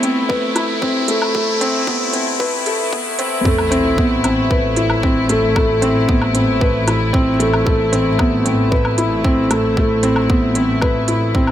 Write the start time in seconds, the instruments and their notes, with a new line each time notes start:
Already playing: double bass section A1, felt piano A3 B3 C4 E4 B4, string section A3 E4, riser
0.03 felt piano C4, closed hi-hat
0.29 felt piano B4, kick
0.55 felt piano E4, closed hi-hat, low woodblock
0.82 felt piano C4, kick
1.08 felt piano A3, closed hi-hat
1.22 low woodblock
1.35 felt piano A3, kick
1.61 felt piano C4, closed hi-hat
1.87 felt piano B3, kick
2.13 felt piano C4, closed hi-hat
2.39 felt piano B4, kick
2.66 felt piano A4, closed hi-hat
2.93 felt piano B3, kick
3.19 felt piano C4, closed hi-hat
3.45 double bass section A1, felt piano A3, kick, sub drop
3.58 low woodblock
3.71 felt piano C4, closed hi-hat
3.98 felt piano B3, kick
4.24 felt piano C4, closed hi-hat, low woodblock
4.50 felt piano B4, kick
4.76 felt piano E4, closed hi-hat
4.90 low woodblock
5.03 felt piano C4, kick
5.29 felt piano A3, closed hi-hat
5.56 felt piano A3, kick, low woodblock
5.82 felt piano C4, closed hi-hat
6.08 felt piano B3, kick
6.22 low woodblock
6.35 felt piano C4, closed hi-hat
6.61 felt piano B4, kick
6.87 felt piano E4, closed hi-hat, low woodblock
7.13 felt piano C4, kick
7.40 felt piano A3, closed hi-hat
7.53 low woodblock
7.66 felt piano A3, kick
7.92 felt piano C4, closed hi-hat
8.19 felt piano B3, kick, low woodblock
8.45 felt piano C4, closed hi-hat
8.71 felt piano B4, kick
8.85 low woodblock
8.98 felt piano E4, closed hi-hat
9.24 felt piano C4, kick
9.51 felt piano A3, closed hi-hat, low woodblock
9.77 felt piano A3, kick
10.03 felt piano C4, closed hi-hat
10.16 low woodblock
10.29 felt piano B3, kick
10.55 felt piano C4, closed hi-hat
10.82 felt piano B4, kick, low woodblock
11.08 felt piano E4, closed hi-hat
11.34 felt piano C4, kick
11.47 low woodblock